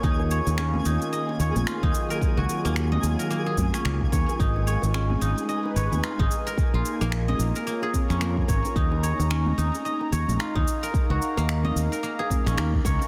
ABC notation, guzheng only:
X:1
M:4/4
L:1/16
Q:"Swing 16ths" 1/4=110
K:Ebm
V:1 name="Guzheng"
E2 d z D z E z e2 d z F E z B- | B G z B, z e2 B B, A z D B, z d z | E2 d z D z E z e2 d z F E z B | z F z B, z e2 B B, A z D B, z d z |
E2 d z D z E z e2 d z F E z B- | B G z B, z e2 B B, A z D B, z d z |]